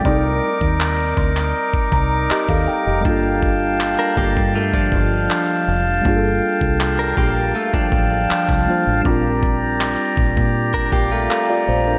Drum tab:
CP |----x--x----x---|----x-------x---|----x-------x---|----x-------x---|
BD |o--o--o--oo--o--|o-o---oo-oo-----|o--o--o--oo--o--|o-o---oo-oo-----|